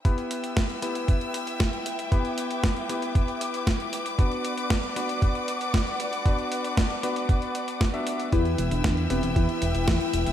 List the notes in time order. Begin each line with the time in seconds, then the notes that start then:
0.05 B3 E4 G4 B4 E5 G5 E6, kick, closed hi-hat
0.18 closed hi-hat
0.31 closed hi-hat
0.44 closed hi-hat
0.57 kick, snare, closed hi-hat
0.70 closed hi-hat
0.82 B3 E4 G4 B4, closed hi-hat
0.95 closed hi-hat
1.08 kick, closed hi-hat
1.21 closed hi-hat
1.34 closed hi-hat
1.47 closed hi-hat
1.60 kick, snare, closed hi-hat
1.73 closed hi-hat
1.86 closed hi-hat
1.99 closed hi-hat
2.12 B3 E4 G4 B4 D6, kick, closed hi-hat
2.25 closed hi-hat
2.38 closed hi-hat
2.51 closed hi-hat
2.64 kick, snare, closed hi-hat
2.77 closed hi-hat
2.89 B3 E4 G4 B4, closed hi-hat
3.02 closed hi-hat
3.15 kick, closed hi-hat
3.28 closed hi-hat
3.41 closed hi-hat
3.54 closed hi-hat
3.67 kick, snare, closed hi-hat
3.80 closed hi-hat
3.93 closed hi-hat
4.06 closed hi-hat
4.18 B3 D4 F#4 B4 D5 F#5, kick, closed hi-hat
4.32 closed hi-hat
4.45 closed hi-hat
4.58 closed hi-hat
4.70 kick, snare, closed hi-hat
4.83 closed hi-hat
4.96 B3 D4 F#4 B4, closed hi-hat
5.09 closed hi-hat
5.22 kick, closed hi-hat
5.35 closed hi-hat
5.48 closed hi-hat
5.61 closed hi-hat
5.74 kick, snare, closed hi-hat
5.87 closed hi-hat
6.00 closed hi-hat
6.13 closed hi-hat
6.26 B3 D4 F#4 B4, kick, closed hi-hat
6.39 closed hi-hat
6.52 closed hi-hat
6.64 closed hi-hat
6.77 kick, snare, closed hi-hat
6.90 closed hi-hat
7.03 B3 D4 F#4 B4, closed hi-hat
7.16 closed hi-hat
7.29 kick, closed hi-hat
7.42 closed hi-hat
7.55 closed hi-hat
7.68 closed hi-hat
7.81 kick, snare, closed hi-hat
7.94 B3 D4 F#4 E5, closed hi-hat
8.07 closed hi-hat
8.20 closed hi-hat
8.32 E2 B3 E4 G4 B4 E5 G5 E6, kick, closed hi-hat
8.45 closed hi-hat
8.58 E1, closed hi-hat
8.71 E1 D4, closed hi-hat
8.84 E2, kick, snare, closed hi-hat
8.97 closed hi-hat
9.10 E1 B3 C4 E4 G4 B4, closed hi-hat
9.23 E1, closed hi-hat
9.36 E2 E4, kick, closed hi-hat
9.49 closed hi-hat
9.62 E1, closed hi-hat
9.75 E1 E4, closed hi-hat
9.88 E2, kick, snare, closed hi-hat
10.01 closed hi-hat
10.13 E1, closed hi-hat
10.26 E1, closed hi-hat